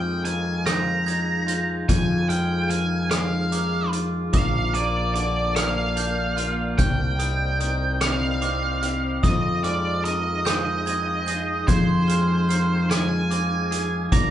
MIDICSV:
0, 0, Header, 1, 7, 480
1, 0, Start_track
1, 0, Tempo, 815217
1, 1113, Time_signature, 6, 3, 24, 8
1, 8423, End_track
2, 0, Start_track
2, 0, Title_t, "Glockenspiel"
2, 0, Program_c, 0, 9
2, 0, Note_on_c, 0, 89, 48
2, 390, Note_on_c, 0, 91, 52
2, 391, Note_off_c, 0, 89, 0
2, 626, Note_on_c, 0, 92, 53
2, 632, Note_off_c, 0, 91, 0
2, 870, Note_off_c, 0, 92, 0
2, 872, Note_on_c, 0, 91, 47
2, 1113, Note_off_c, 0, 91, 0
2, 1113, Note_on_c, 0, 92, 67
2, 1350, Note_on_c, 0, 89, 50
2, 1354, Note_off_c, 0, 92, 0
2, 1581, Note_off_c, 0, 89, 0
2, 1588, Note_on_c, 0, 89, 49
2, 2072, Note_off_c, 0, 89, 0
2, 2073, Note_on_c, 0, 86, 54
2, 2543, Note_off_c, 0, 86, 0
2, 2550, Note_on_c, 0, 86, 64
2, 2792, Note_on_c, 0, 99, 50
2, 2793, Note_off_c, 0, 86, 0
2, 3274, Note_off_c, 0, 99, 0
2, 3274, Note_on_c, 0, 89, 60
2, 3515, Note_off_c, 0, 89, 0
2, 3516, Note_on_c, 0, 91, 56
2, 3753, Note_on_c, 0, 89, 52
2, 3756, Note_off_c, 0, 91, 0
2, 3995, Note_off_c, 0, 89, 0
2, 3997, Note_on_c, 0, 91, 68
2, 4234, Note_on_c, 0, 87, 52
2, 4237, Note_off_c, 0, 91, 0
2, 4470, Note_off_c, 0, 87, 0
2, 4477, Note_on_c, 0, 87, 50
2, 4957, Note_off_c, 0, 87, 0
2, 4957, Note_on_c, 0, 86, 54
2, 5434, Note_on_c, 0, 87, 62
2, 5437, Note_off_c, 0, 86, 0
2, 5674, Note_on_c, 0, 89, 48
2, 5676, Note_off_c, 0, 87, 0
2, 6154, Note_on_c, 0, 91, 61
2, 6155, Note_off_c, 0, 89, 0
2, 6395, Note_off_c, 0, 91, 0
2, 6395, Note_on_c, 0, 92, 53
2, 6632, Note_on_c, 0, 91, 52
2, 6636, Note_off_c, 0, 92, 0
2, 6874, Note_off_c, 0, 91, 0
2, 6876, Note_on_c, 0, 92, 68
2, 7112, Note_on_c, 0, 89, 49
2, 7116, Note_off_c, 0, 92, 0
2, 7347, Note_off_c, 0, 89, 0
2, 7354, Note_on_c, 0, 89, 57
2, 7834, Note_off_c, 0, 89, 0
2, 7835, Note_on_c, 0, 86, 58
2, 8307, Note_off_c, 0, 86, 0
2, 8314, Note_on_c, 0, 86, 73
2, 8423, Note_off_c, 0, 86, 0
2, 8423, End_track
3, 0, Start_track
3, 0, Title_t, "Lead electric guitar"
3, 0, Program_c, 1, 29
3, 0, Note_on_c, 1, 79, 55
3, 131, Note_off_c, 1, 79, 0
3, 147, Note_on_c, 1, 80, 57
3, 387, Note_on_c, 1, 82, 59
3, 397, Note_off_c, 1, 80, 0
3, 1112, Note_on_c, 1, 80, 68
3, 1133, Note_off_c, 1, 82, 0
3, 1346, Note_off_c, 1, 80, 0
3, 1349, Note_on_c, 1, 79, 55
3, 1588, Note_off_c, 1, 79, 0
3, 1591, Note_on_c, 1, 80, 54
3, 1828, Note_off_c, 1, 80, 0
3, 1830, Note_on_c, 1, 77, 57
3, 2290, Note_off_c, 1, 77, 0
3, 2555, Note_on_c, 1, 77, 68
3, 2792, Note_off_c, 1, 77, 0
3, 2794, Note_on_c, 1, 74, 58
3, 3022, Note_off_c, 1, 74, 0
3, 3029, Note_on_c, 1, 74, 58
3, 3271, Note_off_c, 1, 74, 0
3, 3273, Note_on_c, 1, 77, 62
3, 3992, Note_on_c, 1, 79, 63
3, 4017, Note_off_c, 1, 77, 0
3, 4718, Note_on_c, 1, 77, 65
3, 4736, Note_off_c, 1, 79, 0
3, 5436, Note_off_c, 1, 77, 0
3, 5438, Note_on_c, 1, 75, 65
3, 5673, Note_off_c, 1, 75, 0
3, 5675, Note_on_c, 1, 74, 63
3, 5913, Note_off_c, 1, 74, 0
3, 5915, Note_on_c, 1, 75, 54
3, 6153, Note_off_c, 1, 75, 0
3, 6160, Note_on_c, 1, 75, 65
3, 6876, Note_on_c, 1, 72, 72
3, 6899, Note_off_c, 1, 75, 0
3, 7595, Note_on_c, 1, 80, 78
3, 7616, Note_off_c, 1, 72, 0
3, 8319, Note_on_c, 1, 82, 82
3, 8335, Note_off_c, 1, 80, 0
3, 8423, Note_off_c, 1, 82, 0
3, 8423, End_track
4, 0, Start_track
4, 0, Title_t, "Ambient pad"
4, 0, Program_c, 2, 92
4, 0, Note_on_c, 2, 53, 62
4, 0, Note_on_c, 2, 63, 54
4, 0, Note_on_c, 2, 68, 53
4, 0, Note_on_c, 2, 77, 67
4, 2528, Note_off_c, 2, 53, 0
4, 2528, Note_off_c, 2, 63, 0
4, 2529, Note_off_c, 2, 68, 0
4, 2553, Note_on_c, 2, 70, 62
4, 2554, Note_on_c, 2, 58, 58
4, 2558, Note_on_c, 2, 74, 56
4, 3969, Note_off_c, 2, 77, 0
4, 3981, Note_off_c, 2, 70, 0
4, 3982, Note_off_c, 2, 58, 0
4, 3984, Note_off_c, 2, 74, 0
4, 3993, Note_on_c, 2, 79, 69
4, 3994, Note_on_c, 2, 60, 65
4, 3994, Note_on_c, 2, 72, 58
4, 3994, Note_on_c, 2, 75, 55
4, 5420, Note_off_c, 2, 79, 0
4, 5421, Note_off_c, 2, 60, 0
4, 5421, Note_off_c, 2, 72, 0
4, 5421, Note_off_c, 2, 75, 0
4, 5426, Note_on_c, 2, 77, 68
4, 5428, Note_on_c, 2, 53, 61
4, 5429, Note_on_c, 2, 63, 56
4, 5429, Note_on_c, 2, 68, 56
4, 8286, Note_off_c, 2, 53, 0
4, 8286, Note_off_c, 2, 63, 0
4, 8286, Note_off_c, 2, 68, 0
4, 8312, Note_on_c, 2, 62, 60
4, 8312, Note_on_c, 2, 70, 59
4, 8314, Note_on_c, 2, 58, 62
4, 8423, Note_off_c, 2, 58, 0
4, 8423, Note_off_c, 2, 62, 0
4, 8423, Note_off_c, 2, 70, 0
4, 8423, Note_off_c, 2, 77, 0
4, 8423, End_track
5, 0, Start_track
5, 0, Title_t, "Clean electric guitar"
5, 0, Program_c, 3, 27
5, 0, Note_on_c, 3, 41, 50
5, 0, Note_on_c, 3, 56, 48
5, 0, Note_on_c, 3, 60, 47
5, 147, Note_on_c, 3, 51, 45
5, 378, Note_off_c, 3, 56, 0
5, 385, Note_on_c, 3, 56, 45
5, 624, Note_off_c, 3, 60, 0
5, 626, Note_on_c, 3, 63, 45
5, 864, Note_on_c, 3, 65, 51
5, 870, Note_off_c, 3, 41, 0
5, 1105, Note_on_c, 3, 41, 48
5, 1338, Note_off_c, 3, 56, 0
5, 1345, Note_on_c, 3, 56, 46
5, 1352, Note_off_c, 3, 51, 0
5, 1590, Note_on_c, 3, 51, 47
5, 1822, Note_off_c, 3, 56, 0
5, 1829, Note_on_c, 3, 56, 47
5, 1832, Note_off_c, 3, 63, 0
5, 2071, Note_off_c, 3, 65, 0
5, 2071, Note_on_c, 3, 63, 47
5, 2310, Note_on_c, 3, 65, 51
5, 2312, Note_off_c, 3, 41, 0
5, 2548, Note_on_c, 3, 46, 52
5, 2553, Note_off_c, 3, 56, 0
5, 2553, Note_off_c, 3, 65, 0
5, 2554, Note_off_c, 3, 51, 0
5, 2554, Note_off_c, 3, 63, 0
5, 2790, Note_on_c, 3, 58, 48
5, 3033, Note_on_c, 3, 50, 48
5, 3258, Note_off_c, 3, 58, 0
5, 3265, Note_on_c, 3, 58, 49
5, 3509, Note_on_c, 3, 62, 51
5, 3749, Note_on_c, 3, 65, 53
5, 3753, Note_off_c, 3, 46, 0
5, 3990, Note_on_c, 3, 48, 52
5, 3991, Note_off_c, 3, 58, 0
5, 3993, Note_off_c, 3, 62, 0
5, 3993, Note_off_c, 3, 65, 0
5, 3995, Note_off_c, 3, 50, 0
5, 4233, Note_on_c, 3, 55, 44
5, 4469, Note_on_c, 3, 51, 49
5, 4707, Note_off_c, 3, 55, 0
5, 4714, Note_on_c, 3, 55, 48
5, 4954, Note_on_c, 3, 60, 47
5, 5194, Note_off_c, 3, 48, 0
5, 5194, Note_on_c, 3, 67, 52
5, 5433, Note_off_c, 3, 51, 0
5, 5434, Note_on_c, 3, 41, 50
5, 5435, Note_off_c, 3, 55, 0
5, 5435, Note_off_c, 3, 67, 0
5, 5676, Note_on_c, 3, 56, 50
5, 5916, Note_on_c, 3, 51, 46
5, 6150, Note_off_c, 3, 56, 0
5, 6157, Note_on_c, 3, 56, 49
5, 6394, Note_off_c, 3, 60, 0
5, 6397, Note_on_c, 3, 60, 54
5, 6635, Note_off_c, 3, 41, 0
5, 6635, Note_on_c, 3, 68, 54
5, 6875, Note_on_c, 3, 41, 54
5, 7105, Note_off_c, 3, 56, 0
5, 7112, Note_on_c, 3, 56, 53
5, 7115, Note_off_c, 3, 51, 0
5, 7353, Note_on_c, 3, 51, 46
5, 7582, Note_off_c, 3, 56, 0
5, 7589, Note_on_c, 3, 56, 52
5, 7595, Note_off_c, 3, 60, 0
5, 7832, Note_on_c, 3, 60, 54
5, 7834, Note_off_c, 3, 68, 0
5, 8072, Note_on_c, 3, 68, 55
5, 8074, Note_off_c, 3, 41, 0
5, 8311, Note_off_c, 3, 56, 0
5, 8311, Note_on_c, 3, 46, 50
5, 8312, Note_off_c, 3, 60, 0
5, 8313, Note_off_c, 3, 51, 0
5, 8313, Note_off_c, 3, 68, 0
5, 8423, Note_off_c, 3, 46, 0
5, 8423, End_track
6, 0, Start_track
6, 0, Title_t, "Picked electric bass"
6, 0, Program_c, 4, 34
6, 0, Note_on_c, 4, 41, 51
6, 1088, Note_off_c, 4, 41, 0
6, 1111, Note_on_c, 4, 41, 56
6, 2531, Note_off_c, 4, 41, 0
6, 2554, Note_on_c, 4, 34, 59
6, 3972, Note_off_c, 4, 34, 0
6, 3995, Note_on_c, 4, 36, 54
6, 5412, Note_off_c, 4, 36, 0
6, 5437, Note_on_c, 4, 41, 59
6, 6853, Note_off_c, 4, 41, 0
6, 6879, Note_on_c, 4, 41, 60
6, 8292, Note_off_c, 4, 41, 0
6, 8316, Note_on_c, 4, 34, 64
6, 8423, Note_off_c, 4, 34, 0
6, 8423, End_track
7, 0, Start_track
7, 0, Title_t, "Drums"
7, 148, Note_on_c, 9, 42, 41
7, 207, Note_off_c, 9, 42, 0
7, 391, Note_on_c, 9, 37, 77
7, 391, Note_on_c, 9, 42, 53
7, 450, Note_off_c, 9, 37, 0
7, 450, Note_off_c, 9, 42, 0
7, 634, Note_on_c, 9, 42, 39
7, 693, Note_off_c, 9, 42, 0
7, 871, Note_on_c, 9, 42, 44
7, 930, Note_off_c, 9, 42, 0
7, 1113, Note_on_c, 9, 36, 77
7, 1113, Note_on_c, 9, 42, 56
7, 1171, Note_off_c, 9, 36, 0
7, 1172, Note_off_c, 9, 42, 0
7, 1353, Note_on_c, 9, 42, 40
7, 1412, Note_off_c, 9, 42, 0
7, 1592, Note_on_c, 9, 42, 44
7, 1651, Note_off_c, 9, 42, 0
7, 1830, Note_on_c, 9, 37, 76
7, 1830, Note_on_c, 9, 42, 53
7, 1889, Note_off_c, 9, 37, 0
7, 1889, Note_off_c, 9, 42, 0
7, 2074, Note_on_c, 9, 42, 42
7, 2133, Note_off_c, 9, 42, 0
7, 2313, Note_on_c, 9, 42, 46
7, 2372, Note_off_c, 9, 42, 0
7, 2552, Note_on_c, 9, 42, 59
7, 2554, Note_on_c, 9, 36, 85
7, 2610, Note_off_c, 9, 42, 0
7, 2613, Note_off_c, 9, 36, 0
7, 2794, Note_on_c, 9, 42, 46
7, 2853, Note_off_c, 9, 42, 0
7, 3035, Note_on_c, 9, 42, 46
7, 3094, Note_off_c, 9, 42, 0
7, 3275, Note_on_c, 9, 37, 76
7, 3275, Note_on_c, 9, 42, 64
7, 3334, Note_off_c, 9, 37, 0
7, 3334, Note_off_c, 9, 42, 0
7, 3514, Note_on_c, 9, 42, 45
7, 3573, Note_off_c, 9, 42, 0
7, 3755, Note_on_c, 9, 42, 47
7, 3814, Note_off_c, 9, 42, 0
7, 3995, Note_on_c, 9, 42, 60
7, 3996, Note_on_c, 9, 36, 82
7, 4054, Note_off_c, 9, 42, 0
7, 4055, Note_off_c, 9, 36, 0
7, 4236, Note_on_c, 9, 42, 46
7, 4295, Note_off_c, 9, 42, 0
7, 4478, Note_on_c, 9, 42, 41
7, 4537, Note_off_c, 9, 42, 0
7, 4716, Note_on_c, 9, 37, 76
7, 4716, Note_on_c, 9, 42, 59
7, 4775, Note_off_c, 9, 37, 0
7, 4775, Note_off_c, 9, 42, 0
7, 4957, Note_on_c, 9, 42, 39
7, 5016, Note_off_c, 9, 42, 0
7, 5197, Note_on_c, 9, 42, 43
7, 5256, Note_off_c, 9, 42, 0
7, 5438, Note_on_c, 9, 36, 84
7, 5440, Note_on_c, 9, 42, 60
7, 5497, Note_off_c, 9, 36, 0
7, 5499, Note_off_c, 9, 42, 0
7, 5677, Note_on_c, 9, 42, 45
7, 5736, Note_off_c, 9, 42, 0
7, 5919, Note_on_c, 9, 42, 42
7, 5978, Note_off_c, 9, 42, 0
7, 6161, Note_on_c, 9, 37, 79
7, 6161, Note_on_c, 9, 42, 57
7, 6220, Note_off_c, 9, 37, 0
7, 6220, Note_off_c, 9, 42, 0
7, 6400, Note_on_c, 9, 42, 41
7, 6459, Note_off_c, 9, 42, 0
7, 6639, Note_on_c, 9, 42, 43
7, 6698, Note_off_c, 9, 42, 0
7, 6878, Note_on_c, 9, 36, 86
7, 6880, Note_on_c, 9, 42, 63
7, 6937, Note_off_c, 9, 36, 0
7, 6939, Note_off_c, 9, 42, 0
7, 7121, Note_on_c, 9, 42, 52
7, 7180, Note_off_c, 9, 42, 0
7, 7362, Note_on_c, 9, 42, 50
7, 7421, Note_off_c, 9, 42, 0
7, 7600, Note_on_c, 9, 37, 73
7, 7600, Note_on_c, 9, 42, 58
7, 7659, Note_off_c, 9, 37, 0
7, 7659, Note_off_c, 9, 42, 0
7, 7838, Note_on_c, 9, 42, 45
7, 7897, Note_off_c, 9, 42, 0
7, 8079, Note_on_c, 9, 42, 52
7, 8138, Note_off_c, 9, 42, 0
7, 8315, Note_on_c, 9, 36, 89
7, 8316, Note_on_c, 9, 42, 64
7, 8374, Note_off_c, 9, 36, 0
7, 8375, Note_off_c, 9, 42, 0
7, 8423, End_track
0, 0, End_of_file